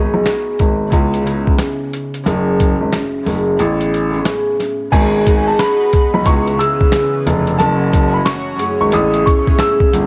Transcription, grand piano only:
0.14 B1
0.60 G#1
0.93 C#2
2.26 F#1
2.80 G#1
3.26 F#1
3.60 A1
4.93 G#1
6.14 B1
6.26 C#2
7.27 F1
7.60 F#1
8.81 G#1
8.93 A1
9.93 G1

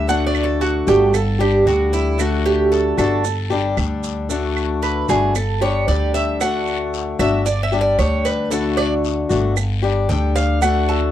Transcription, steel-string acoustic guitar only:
0.07 D3 A3 D4 F#4
0.87 A3 D4 F#4
1.13 muted steel-string acoustic guitar stroke
1.39 G3 D4 G4
1.65 D3 G3 D4 G4
2.18 D3 A3 D4 F#4
2.97 A3 D4 F#4
3.24 muted steel-string acoustic guitar stroke
3.50 G3 D4 G4
3.77 D3 G3 D4 G4
4.29 D3 A3 D4 F#4
5.09 A3 D4 F#4
5.35 muted steel-string acoustic guitar stroke
5.61 G3 D4 G4
5.87 D3 G3 D4 G4
6.40 D3 A3 D4 F#4
7.19 A3 D4 F#4
7.46 muted steel-string acoustic guitar stroke
7.72 G3 D4 G4
7.98 D3 G3 D4 G4
8.50 D3 A3 D4 F#4
9.29 A3 D4 F#4
9.56 muted steel-string acoustic guitar stroke
9.82 G3 D4 G4
10.09 D3 G3 D4 G4
10.61 D3 A3 D4 F#4

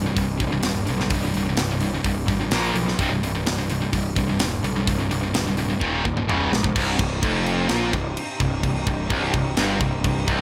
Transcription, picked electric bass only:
0.17 C1
0.40 C1
0.63 D#1
0.89 B1
1.10 C1
1.35 C1
1.59 C1
2.04 C1
2.28 G#1
2.53 A#1
2.74 B1
2.99 C1
3.22 C1
3.45 C1
3.93 C1
4.16 C1
4.39 D#1
4.64 B1
4.87 C1
5.11 C1
5.34 D1
5.81 D#1
6.05 D#1
6.27 C#1
6.52 A#1
6.75 C1
6.99 C1
7.22 F1
7.69 A#1
7.94 C1
8.40 C1
8.63 C1
8.86 C1
9.10 C1
9.34 C1
9.57 G1
9.81 C1
10.04 C1
10.28 C1

